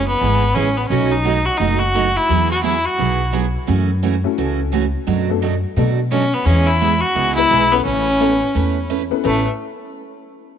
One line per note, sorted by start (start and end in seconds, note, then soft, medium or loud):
0.00 0.16 F#1 medium
0.07 0.56 B3 loud
0.21 0.51 G#1 medium
0.21 0.42 E3 medium
0.21 0.43 G#3 medium
0.21 0.43 B3 medium
0.21 0.43 E4 medium
0.21 0.43 G#4 medium
0.55 0.86 A1 medium
0.55 0.67 E3 medium
0.55 0.67 G#3 medium
0.55 0.67 B3 medium
0.55 0.79 C#4 loud
0.55 0.67 E4 medium
0.55 0.67 G#4 medium
0.77 0.88 B3 medium
0.89 1.46 B1 medium
0.89 1.12 B2 soft
0.89 1.12 F#3 medium
0.89 1.12 A3 medium
0.89 1.13 C#4 medium
0.89 1.12 D#4 medium
0.89 1.12 F#4 medium
1.11 1.47 D#4 loud
1.25 1.36 B2 medium
1.25 1.36 F#3 medium
1.25 1.37 A3 medium
1.25 1.37 D#4 medium
1.25 1.37 F#4 medium
1.46 1.59 F#4 medium
1.57 2.15 F#1 medium
1.57 1.81 B2 medium
1.57 1.81 F#3 medium
1.57 1.82 A3 medium
1.57 1.81 D#4 medium
1.57 1.82 D#4 medium
1.57 1.82 F#4 medium
1.79 2.18 F#4 medium
1.94 2.06 B2 medium
1.94 2.06 F#3 medium
1.94 2.06 A3 medium
1.94 2.07 D#4 medium
1.94 2.07 F#4 medium
2.16 2.51 E4 medium
2.28 2.85 E2 medium
2.28 2.50 E3 soft
2.28 2.51 F#3 medium
2.28 2.51 B3 medium
2.28 2.51 E4 medium
2.28 2.51 G#4 medium
2.51 2.63 F#4 medium
2.63 2.75 E3 medium
2.63 2.75 F#3 medium
2.63 2.75 B3 medium
2.63 2.86 E4 medium
2.63 2.75 E4 medium
2.63 2.76 G#4 medium
2.85 3.33 F#4 medium
2.98 3.55 B1 medium
2.98 3.20 E3 soft
2.98 3.20 F#3 medium
2.98 3.20 B3 medium
2.98 3.20 E4 medium
2.98 3.20 G#4 medium
3.32 3.44 E3 medium
3.32 3.45 F#3 medium
3.32 3.44 B3 medium
3.32 3.45 E4 medium
3.32 3.45 G#4 medium
3.67 4.24 F#2 medium
3.67 3.89 C#3 medium
3.67 3.89 E3 medium
3.67 3.89 A3 medium
3.67 3.89 C#4 medium
3.67 3.90 F#4 medium
4.03 4.14 C#3 medium
4.03 4.14 E3 medium
4.03 4.14 A3 medium
4.03 4.15 C#4 medium
4.03 4.15 F#4 medium
4.24 4.69 A3 medium
4.24 4.69 C#4 medium
4.24 4.70 E4 medium
4.24 4.70 F#4 medium
4.24 4.70 A4 medium
4.38 4.94 C#2 medium
4.38 4.59 C#3 medium
4.38 4.59 E3 medium
4.38 4.59 A3 medium
4.38 4.59 C#4 medium
4.38 4.60 F#4 medium
4.72 4.84 C#3 medium
4.72 4.84 E3 medium
4.72 4.84 A3 medium
4.72 4.84 C#4 medium
4.72 4.84 F#4 medium
5.07 5.63 F#2 loud
5.07 5.28 B2 medium
5.07 5.29 F#3 medium
5.07 5.29 A3 medium
5.07 5.29 D4 medium
5.07 5.29 F#4 medium
5.30 5.41 A3 medium
5.30 5.41 B3 medium
5.30 5.41 D4 medium
5.30 5.41 F#4 medium
5.30 5.41 A4 medium
5.42 5.53 B2 medium
5.42 5.53 F#3 medium
5.42 5.54 A3 medium
5.42 5.54 D4 medium
5.42 5.54 F#4 medium
5.76 5.98 B2 medium
5.76 6.32 B2 medium
5.76 5.98 F#3 medium
5.76 5.97 A3 medium
5.76 5.98 A3 medium
5.76 5.97 B3 medium
5.76 5.97 D4 medium
5.76 5.99 D4 medium
5.76 5.97 F#4 medium
5.76 5.99 F#4 medium
5.76 5.97 A4 medium
6.11 6.23 B2 medium
6.11 6.23 F#3 medium
6.11 6.23 A3 medium
6.11 6.35 C#4 medium
6.11 6.23 D4 medium
6.11 6.23 F#4 medium
6.34 6.47 B3 medium
6.45 7.02 E2 loud
6.45 6.68 E3 medium
6.45 6.67 G#3 medium
6.45 6.68 B3 medium
6.45 6.68 C#4 loud
6.45 6.68 E4 medium
6.45 6.68 G#4 medium
6.67 7.02 E4 loud
6.81 6.93 E3 medium
6.81 6.93 G#3 medium
6.81 6.93 B3 medium
6.81 6.93 E4 medium
6.81 6.93 G#4 medium
7.01 7.35 F#4 loud
7.15 7.45 C#2 medium
7.15 7.37 E3 medium
7.15 7.37 G#3 medium
7.15 7.37 B3 medium
7.15 7.37 E4 medium
7.15 7.37 G#4 medium
7.35 7.70 G#3 medium
7.35 7.70 B3 medium
7.35 7.73 E4 loud
7.35 7.70 E4 medium
7.35 7.71 G#4 medium
7.35 7.71 B4 medium
7.50 7.80 B1 medium
7.50 7.62 E3 medium
7.50 7.62 G#3 medium
7.50 7.62 B3 medium
7.50 7.62 E4 medium
7.50 7.62 G#4 medium
7.72 7.84 B3 medium
7.72 7.84 C#4 medium
7.72 7.84 E4 medium
7.72 7.84 A4 medium
7.72 7.84 B4 medium
7.84 8.41 A1 loud
7.84 8.06 A3 medium
7.84 8.86 C#4 loud
7.84 8.07 C#4 medium
7.84 8.07 E4 medium
7.84 8.07 B4 medium
8.20 8.32 A3 medium
8.20 8.40 B3 medium
8.20 8.40 C#4 medium
8.20 8.32 C#4 medium
8.20 8.32 E4 medium
8.20 8.40 E4 medium
8.20 8.40 A4 medium
8.20 8.32 B4 medium
8.20 8.41 B4 medium
8.55 9.11 E2 medium
8.55 8.76 A3 medium
8.55 8.77 C#4 medium
8.55 8.77 E4 medium
8.55 8.77 B4 medium
8.90 9.01 A3 medium
8.90 9.01 C#4 medium
8.90 9.01 E4 medium
8.90 9.02 B4 medium
9.10 9.22 B3 medium
9.10 9.22 C#4 medium
9.10 9.22 E4 medium
9.10 9.23 A4 medium
9.10 9.23 B4 medium
9.24 9.45 A1 medium
9.24 9.42 A3 medium
9.24 9.46 A3 medium
9.24 9.44 B3 medium
9.24 9.44 C#4 medium
9.24 9.42 C#4 medium
9.24 9.44 E4 medium
9.24 9.43 E4 medium
9.24 9.44 A4 medium
9.24 9.45 B4 medium
9.24 9.43 B4 medium